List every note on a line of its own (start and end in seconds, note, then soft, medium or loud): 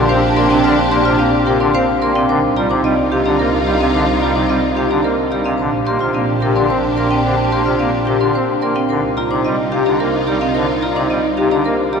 0.00 2.14 A#1 medium
0.00 0.13 D4 medium
0.00 2.11 D4 loud
0.00 2.11 D4 medium
0.00 2.11 G4 medium
0.00 0.13 D5 medium
0.00 0.13 C6 medium
0.09 0.20 C4 medium
0.09 0.27 C5 medium
0.09 0.27 C5 loud
0.09 0.27 F5 loud
0.36 0.47 A#3 loud
0.36 0.54 A#4 medium
0.36 0.54 D5 medium
0.36 0.54 C6 medium
0.50 0.61 C3 medium
0.50 0.68 C4 loud
0.50 0.68 F5 medium
0.50 0.68 G5 loud
0.64 0.75 D3 medium
0.64 0.82 C5 loud
0.64 0.82 C5 medium
0.64 0.82 F6 medium
0.92 1.02 A#3 medium
0.92 1.09 G4 medium
0.92 1.09 D5 medium
0.92 1.09 C6 medium
1.05 1.16 C3 loud
1.05 1.23 F4 medium
1.05 1.23 C5 loud
1.05 1.23 F6 medium
1.19 1.30 A#3 medium
1.19 1.37 C4 medium
1.19 1.37 D5 medium
1.19 1.37 F5 medium
1.46 1.57 C3 loud
1.46 1.64 G4 loud
1.46 1.65 A#4 medium
1.46 1.64 G5 medium
1.60 1.71 D3 medium
1.60 1.78 D4 medium
1.60 1.78 D5 medium
1.60 1.78 C6 medium
1.74 1.85 C4 medium
1.74 1.92 C5 medium
1.74 1.92 C5 loud
1.74 1.92 F5 loud
2.01 2.12 A#3 medium
2.01 2.20 A#4 medium
2.01 2.19 D5 medium
2.01 2.19 C6 medium
2.15 2.26 C3 medium
2.15 2.33 C4 medium
2.15 2.33 F5 medium
2.15 2.33 G5 loud
2.29 5.45 C2 medium
2.29 2.39 D3 medium
2.29 5.36 D#4 medium
2.29 5.42 D#4 medium
2.29 5.42 F4 medium
2.29 2.47 A#4 medium
2.29 2.47 C5 loud
2.29 2.47 D6 medium
2.57 2.67 G3 medium
2.57 2.75 F4 medium
2.57 2.74 D5 medium
2.57 2.74 A#5 medium
2.70 2.81 C3 loud
2.70 2.88 D#4 medium
2.70 2.88 C5 medium
2.70 2.88 D6 medium
2.84 2.94 G3 medium
2.84 3.02 C4 medium
2.84 3.02 D5 medium
2.84 3.02 D#5 medium
3.12 3.22 C3 medium
3.12 3.29 G4 medium
3.12 3.30 F5 medium
3.25 3.36 D3 medium
3.25 3.43 D4 medium
3.25 3.43 D5 medium
3.25 3.43 A#5 medium
3.39 3.49 A#3 medium
3.39 3.57 A#4 medium
3.39 3.57 C5 medium
3.66 3.77 G3 medium
3.66 3.85 G4 medium
3.66 3.84 D5 medium
3.66 3.84 A#5 medium
3.79 3.91 C3 medium
3.79 3.98 C4 medium
3.79 3.98 D#5 medium
3.79 3.98 F5 medium
3.92 4.04 D3 medium
3.92 4.12 A#4 medium
3.92 4.11 C5 medium
3.92 4.12 D6 medium
4.20 4.32 G3 medium
4.20 4.40 F4 medium
4.20 4.39 D5 medium
4.20 4.39 A#5 medium
4.33 4.46 C3 medium
4.33 4.53 D#4 medium
4.33 4.53 C5 medium
4.33 4.53 D6 medium
4.47 4.60 G3 medium
4.47 4.67 C4 medium
4.47 4.66 D5 medium
4.47 4.67 D#5 medium
4.75 4.87 C3 medium
4.75 4.94 G4 medium
4.75 4.95 G4 medium
4.75 4.95 F5 medium
4.88 5.00 D3 medium
4.88 5.08 D4 medium
4.88 5.08 D5 medium
4.88 5.08 A#5 medium
5.03 5.15 A#3 medium
5.03 5.22 A#4 medium
5.03 5.21 C5 medium
5.31 5.42 G3 medium
5.31 5.50 G4 medium
5.31 5.49 D5 medium
5.31 5.50 A#5 medium
5.44 5.55 C3 medium
5.44 5.63 C4 medium
5.44 5.63 D#5 medium
5.44 5.63 F5 medium
5.58 8.75 A#1 medium
5.58 5.70 D3 medium
5.58 8.72 D4 medium
5.58 8.72 G4 medium
5.58 5.77 C5 medium
5.85 5.97 A#3 medium
5.85 6.05 G4 medium
5.85 6.04 D5 medium
5.85 6.05 C6 medium
5.99 6.11 C3 medium
5.99 6.19 F4 medium
5.99 6.18 C5 medium
5.99 6.18 F6 medium
6.13 6.25 A#3 medium
6.13 6.32 C4 medium
6.13 6.32 D5 medium
6.13 6.32 F5 medium
6.40 6.52 C3 medium
6.40 6.59 G4 medium
6.40 6.60 A#4 medium
6.40 6.60 G5 medium
6.55 6.66 D3 medium
6.55 6.74 D4 medium
6.55 6.73 D5 medium
6.55 6.73 C6 medium
6.68 6.80 C4 medium
6.68 6.87 C5 medium
6.68 6.88 C5 medium
6.96 7.07 A#3 medium
6.96 7.15 A#4 medium
6.96 7.14 D5 medium
6.96 7.15 C6 medium
7.09 7.29 C4 medium
7.09 7.28 F5 medium
7.09 7.28 G5 medium
7.23 7.35 D3 medium
7.23 7.42 C5 medium
7.50 7.62 A#3 medium
7.50 7.70 G4 medium
7.50 7.69 D5 medium
7.50 7.70 C6 medium
7.64 7.76 C3 medium
7.64 7.84 F4 medium
7.64 7.83 C5 medium
7.64 7.84 F6 medium
7.78 7.90 A#3 medium
7.78 7.98 C4 medium
7.78 7.97 D5 medium
7.78 7.97 F5 medium
8.05 8.17 C3 medium
8.05 8.24 G4 medium
8.05 8.25 A#4 medium
8.05 8.25 G5 medium
8.20 8.31 D3 medium
8.20 8.39 D4 medium
8.20 8.38 D5 medium
8.20 8.39 C6 medium
8.33 8.45 C4 medium
8.33 8.52 C5 medium
8.33 8.53 C5 medium
8.62 8.73 A#3 medium
8.62 8.80 A#4 medium
8.62 8.80 D5 medium
8.62 8.80 C6 medium
8.75 8.94 C4 medium
8.75 8.93 F5 medium
8.75 8.94 G5 medium
8.89 12.00 C2 medium
8.89 9.00 D3 medium
8.89 12.00 D#4 medium
8.89 12.00 F4 medium
8.89 9.08 A#4 medium
8.89 9.07 C5 medium
9.17 9.35 F4 medium
9.17 9.35 D5 medium
9.17 9.35 A#5 medium
9.31 9.42 C3 medium
9.31 9.49 D#4 medium
9.31 9.49 C5 medium
9.31 9.49 D6 medium
9.44 9.55 G3 medium
9.44 9.63 C4 medium
9.44 9.62 D5 medium
9.44 9.62 D#5 medium
9.72 9.83 C3 medium
9.72 9.90 G4 loud
9.72 9.90 G4 medium
9.72 9.90 F5 medium
9.85 9.97 D3 medium
9.85 10.04 D4 medium
9.85 10.03 D5 medium
9.85 10.04 A#5 medium
10.00 10.11 A#3 medium
10.00 10.18 A#4 medium
10.00 10.18 C5 medium
10.26 10.38 G3 medium
10.26 10.45 G4 medium
10.26 10.45 D5 medium
10.26 10.45 A#5 medium
10.40 10.59 C4 medium
10.40 10.58 D#5 medium
10.40 10.59 F5 medium
10.54 10.66 D3 medium
10.54 10.73 A#4 medium
10.54 10.72 C5 loud
10.81 11.00 F4 medium
10.81 11.00 D5 medium
10.81 11.00 A#5 medium
10.96 11.07 C3 medium
10.96 11.14 D#4 medium
10.96 11.14 C5 medium
10.96 11.14 D6 medium
11.10 11.21 G3 medium
11.10 11.28 C4 medium
11.10 11.28 D5 medium
11.10 11.28 D#5 medium
11.37 11.48 C3 medium
11.37 11.55 G4 loud
11.37 11.55 G4 medium
11.37 11.55 F5 medium
11.51 11.62 D3 medium
11.51 11.69 D4 medium
11.51 11.69 D5 medium
11.51 11.69 A#5 medium
11.64 11.76 A#3 medium
11.64 11.83 A#4 medium
11.64 11.82 C5 medium
11.93 12.00 G3 medium
11.93 12.00 G4 medium
11.93 12.00 D5 medium
11.93 12.00 A#5 medium